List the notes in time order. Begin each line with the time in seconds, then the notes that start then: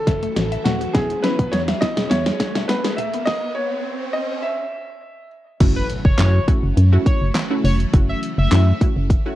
Already playing: C#3 E3 F#3 A3 E4 A4, riser
0.07 F#1 E5, kick, snare, closed hi-hat
0.23 A3, closed hi-hat
0.36 A1 F#4, snare, closed hi-hat
0.52 E5, closed hi-hat
0.64 D#1 A3 F#4, snare, closed hi-hat
0.81 F#4, closed hi-hat
0.93 E1 G#3 B3 C#4 E4 G#4, kick, snare, closed hi-hat
1.10 closed hi-hat
1.22 B3 C#4 E4 B4, snare, closed hi-hat
1.39 E1 B3, kick, closed hi-hat
1.51 E2 G#4 C#5, snare, closed hi-hat
1.68 E5, snare, closed hi-hat
1.81 B3 C#4 E4 D#5, kick, snare, closed hi-hat
1.97 E1 G#4, snare, closed hi-hat
2.10 E2 C#5 E5, snare, closed hi-hat
2.26 snare, closed hi-hat
2.40 G#4, kick, snare, closed hi-hat
2.55 E1 E5, snare, closed hi-hat
2.68 B3 B4, snare, closed hi-hat
2.85 G#4, snare, closed hi-hat
2.97 D#1 E5, closed hi-hat
3.14 B3, closed hi-hat
3.25 D#5, kick, snare
3.55 C#5
4.13 D#5
4.42 E5
5.60 F#1 C#3 E3 F#3 A3 C#4 E4 F#4, kick, closed hi-hat, crash, impact
5.76 B4
5.90 closed hi-hat
6.05 F#1 C#5, kick
6.18 F#2 A3 C#4 E4 F#4, snare, clap, closed hi-hat
6.48 A3 C#4 E4 F#4, kick, closed hi-hat
6.63 F#1
6.77 F#2, closed hi-hat
6.92 A3 C#4 E4 F#4
7.06 C#5, kick, closed hi-hat
7.22 F#1
7.35 snare, clap, closed hi-hat
7.50 A3 C#4 E4 F#4
7.64 F1 C#5, open hi-hat
7.80 closed hi-hat
7.93 F#1 A3 C#4 E4 F#4, kick, closed hi-hat
8.09 E5
8.23 closed hi-hat
8.38 F#1 E5
8.51 F#2 A3 C#4 E4 F#4, snare, clap, closed hi-hat
8.81 A3 C#4 E4 F#4, kick, closed hi-hat
8.96 F#1
9.10 kick, closed hi-hat
9.25 A3 C#4 E4 F#4